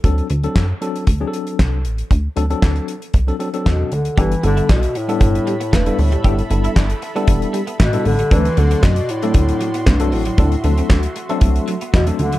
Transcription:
<<
  \new Staff \with { instrumentName = "Analog synth pad" } { \time 4/4 \key g \major \tempo 4 = 116 << { r1 | r1 | <a' b''>1~ | <a' b''>1 |
<fis' c'''>1~ | <fis' c'''>1 | } \\ { r1 | r1 | e''1~ | e''1 |
d''1 | e''1 | } >> }
  \new Staff \with { instrumentName = "Tine electric piano" } { \time 4/4 \key g \major <fis c' d' a'>8 r16 <fis c' d' a'>8 r16 <fis c' d' a'>8 r16 <fis c' d' gis' a'>4~ <fis c' d' gis' a'>16 r8 | r8 <fis c' d' a'>16 <fis c' d' a'>8. r8. <fis c' d' a'>16 <fis c' d' a'>16 <fis c' d' a'>8. r8 | <g b d' e' a'>16 r16 <g b d' e' a'>8. r8 <g b d' e' a'>8. r8. <g b d' e' a'>8 r16 | <g b d' e' a'>16 r16 <g b d' e' a'>8. r8 <g b d' e' a'>8. r8. <g b d' e' a'>8 r16 |
<fis a c' d' a'>16 r16 <fis a c' d' a'>8. r8 <fis a c' d' a'>8. r8. <fis a c' d' a'>8 r16 | <fis a c' d' a'>16 r16 <f fis a c' d' a'>8. r8 <fis a c' d' a'>8. r8. <fis a c' d' a'>8 r16 | }
  \new Staff \with { instrumentName = "Clean electric guitar" } { \time 4/4 \key g \major r1 | r1 | g'16 r8 e'16 d'16 r8 b16 r8 g16 b16 a16 r8 g16 | g'16 r8 e'16 d'16 r8 b16 r8 g16 b16 a16 r8 g16 |
d'16 r8 c'16 b16 r8 a16 r8 fis16 b16 a16 r8 fis16 | d'16 r8 c'16 b16 r8 a16 r8 fis16 b16 a16 r8 fis16 | }
  \new Staff \with { instrumentName = "Bass clarinet" } { \clef bass \time 4/4 \key g \major r1 | r2. b,8 d8 | e8 d8 b,8 a,4. g,8 a,8~ | a,8 r2 r8 b,8 d8 |
e8 d8 b,8 a,4. g,8 a,8~ | a,8 r2 r8 b,8 d8 | }
  \new Staff \with { instrumentName = "Analog synth bass" } { \clef bass \time 4/4 \key g \major d,8 d,8 fis,8 r8 d,8 r8 c,8 a,,8 | d,8 d,8 d,8 r8 c,8 r8 e,8 d,8 | g,,8 g,,8 b,,8 r8 g,,8 r8 e,,8 d,8 | g,,8 g,,8 g,,8 r8 e,,8 r8 a,,8 a,,8 |
d,8 d,8 fis,8 r8 d,8 r8 c,8 a,,8 | d,8 d,8 d,8 r8 c,8 r8 e,8 d,8 | }
  \new DrumStaff \with { instrumentName = "Drums" } \drummode { \time 4/4 <hh bd>16 hh16 hh16 hh16 <hc bd sn>8 hh16 hh16 <hh bd>8 hh16 hh16 <hc bd sn>8 hh16 hh16 | <hh bd>8 hh16 hh16 <hc bd sn>16 hh16 hh16 hh16 <hh bd>16 hh16 hh16 hh16 <hc bd sn>8 hh16 hh16 | <hh bd>16 hh16 hh16 hh16 <hc bd sn>16 hh16 hh16 hh16 <hh bd>16 hh16 hh16 hh16 <hc bd sn>16 hh16 hho16 hh16 | <hh bd>16 hh16 hh16 hh16 <hc bd sn>16 hh16 hh16 hh16 <hh bd>16 hh16 hh16 hh16 <hc bd sn>16 hh16 hho16 hh16 |
<hh bd>16 hh16 hh16 hh16 <hc bd sn>16 hh16 hh16 hh16 <hh bd>16 hh16 hh16 hh16 <hc bd sn>16 hh16 hho16 hh16 | <hh bd>16 hh16 hh16 hh16 <hc bd sn>16 hh16 hh16 hh16 <hh bd>16 hh16 hh16 hh16 <hc bd sn>16 hh16 hh16 hh16 | }
>>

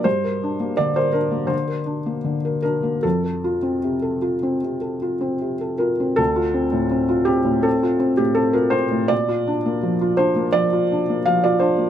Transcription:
\new Staff \with { instrumentName = "Felt piano" } { \time 4/4 \key d \minor \tempo 4 = 82 << { c''4 d''16 c''16 bes'8 c''4. bes'8 | a'2. r8 bes'8 | a'4. g'8 a'8. g'16 a'16 bes'16 c''8 | d''4. c''8 d''4 f''16 d''16 c''8 | } \\ { g,16 bes'16 d'16 bes16 d16 bes'16 d'16 bes16 d16 bes'16 d'16 bes16 d16 bes'16 d'16 bes16 | f,16 a'16 f'16 c'16 c16 a'16 f'16 c'16 c16 a'16 f'16 c'16 c16 a'16 f'16 c'16 | d,16 f'16 c'16 a,16 c'16 f'16 c'16 a,16 c'16 f'16 c'16 a,16 c'16 f'16 c'16 a,16 | bes,16 f'16 d'16 bes16 f16 f'16 d'16 bes16 f16 f'16 d'16 bes16 f16 f'16 d'16 bes16 | } >> }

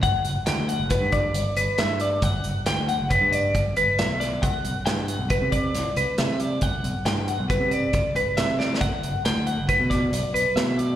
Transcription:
<<
  \new Staff \with { instrumentName = "Clean electric guitar" } { \time 5/4 \key g \major \tempo 4 = 137 fis''4 g''8 fis''8 b'8 d''4 b'8 e''8 d''8 | fis''4 g''8 fis''8 b'8 d''4 b'8 e''8 d''8 | fis''4 g''8 fis''8 b'8 d''4 b'8 e''8 d''8 | fis''4 g''8 fis''8 b'8 d''4 b'8 e''8 d''8 |
fis''4 g''8 fis''8 b'8 d''4 b'8 e''8 d''8 | }
  \new Staff \with { instrumentName = "Fingered electric bass" } { \clef bass \time 5/4 \key g \major g,,16 r16 fis,,16 r16 d,8. fis,,16 r16 g,8. g,,16 r16 g,,16 r16 g,4 | g,,16 r16 fis,,16 r16 d,8. fis,,16 r16 g,8. g,,16 r16 g,,16 r16 b,,4 | c,16 r16 b,,16 r16 g,8. b,,16 r16 c8. c,16 r16 c,16 r16 c4 | c,16 r16 b,,16 r16 g,8. b,,16 r16 c8. c,16 r16 c,16 r16 c4 |
b,,16 r16 fis,,16 r16 d,8. fis,,16 r16 b,8. b,,16 r16 b,,16 r16 b,4 | }
  \new DrumStaff \with { instrumentName = "Drums" } \drummode { \time 5/4 <hh bd>8 hh8 <hh sn>8 hh8 <hh bd sn>8 <hh bd>8 hh8 hh8 <hh sn>8 hh8 | <hh bd>8 hh8 <hh sn>8 hh8 <hh bd>8 hh8 <hh bd>8 hh8 <hh sn>8 <hh sn>8 | <hh bd>8 hh8 <hh sn>8 hh8 <hh bd>8 <hh bd>8 <hh sn>8 hh8 <hh sn>8 hh8 | <hh bd>8 hh8 <hh sn>8 hh8 <hh bd>8 hh8 <hh bd>8 hh8 \tuplet 3/2 { <hh sn>16 r16 r16 sn16 r16 sn16 } |
<hh bd>8 hh8 <hh sn>8 hh8 <hh bd>8 <hh bd sn>8 hh8 hh8 <hh sn>8 hh8 | }
>>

